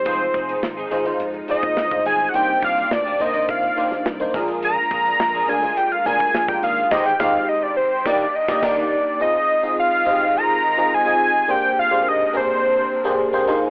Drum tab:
CC |----------------|----------------|----------------|x-----------x---|
HH |xxxx--xxxxxx--xx|x-xx--xxxxxx-xxx|x-xx--xxxxxx-xxx|----------------|
SD |----o-o-----o-o-|----o------oo-o-|----o-------o---|o-o-----o--oo---|
BD |o-o--------o-o--|--o-----o-----o-|--o--------o-o--|o-o-----o--oo---|

CC |----------------|----------------|
HH |----------------|----------------|
SD |----------------|----------------|
BD |----------------|----------------|